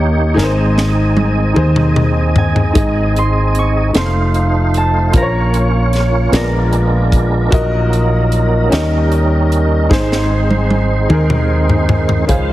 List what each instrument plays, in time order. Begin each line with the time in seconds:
Already playing: fingered electric bass D#2, upright piano D#3 C#4 D#4 G4 A#4 D#5, tonewheel organ A#3 D#4 G4 C#5
0.34 fingered electric bass G#1, upright piano G#2 D#4 G#4 A#4, tonewheel organ C4 D#4 G#4 D#5
0.38 snare
0.44 upright piano C5
0.78 snare
1.17 high tom
1.54 fingered electric bass D#2, upright piano D#4 G#4 C5, mid tom
1.76 mid tom
1.96 mid tom
2.36 harp G#5, floor tom
2.56 floor tom
2.73 fingered electric bass G#1, upright piano G#2 D#4 G#4 D#5, kick, closed hi-hat
3.16 harp C6, closed hi-hat
3.55 harp C#6, closed hi-hat
3.93 fingered electric bass F1, tonewheel organ A3 D#4 F4 C5, upright piano D#4 F4 A4 C5 F5, snare, closed hi-hat
3.98 harp C6
4.34 closed hi-hat
4.74 harp A5, closed hi-hat
5.12 fingered electric bass A#1, upright piano A#2 F4 A#4 C5, tonewheel organ A#3 C#4 F4 C#5, kick, closed hi-hat
5.17 harp A#5
5.22 upright piano C#5
5.54 closed hi-hat
5.93 snare, closed hi-hat
6.31 fingered electric bass A#1, upright piano A#2 B3 F4 G#4 A#4 D5, tonewheel organ G#3 B3 D4 A#4, snare, closed hi-hat
6.36 harp A#5
6.73 closed hi-hat
7.12 kick, closed hi-hat
7.51 fingered electric bass A#1, upright piano A#2 F#4 A#4 D#5, tonewheel organ F3 A#3 D#4 A#4, kick, closed hi-hat
7.59 tonewheel organ F#3
7.93 closed hi-hat
8.32 closed hi-hat
8.70 fingered electric bass D#2, upright piano D#3 C#4 D#4 G4 A#4 D#5, tonewheel organ G3 C#4 D#4 A#4, snare, closed hi-hat
9.12 closed hi-hat
9.52 closed hi-hat
9.89 fingered electric bass G#1, upright piano G#2 D#4 G#4 C5, tonewheel organ G#3 C4 D#4 C5, kick, snare
10.12 snare
10.51 high tom
10.71 high tom
11.09 fingered electric bass D#2, upright piano D#4 G#4 A#4, mid tom
11.30 mid tom
11.69 floor tom
11.89 floor tom
12.09 floor tom
12.27 fingered electric bass C#2, string section C#3 G#3 C5 F5, upright piano C#3 C#4 F4 G#4 C5 F5, tonewheel organ D#3 F3 C5, kick, closed hi-hat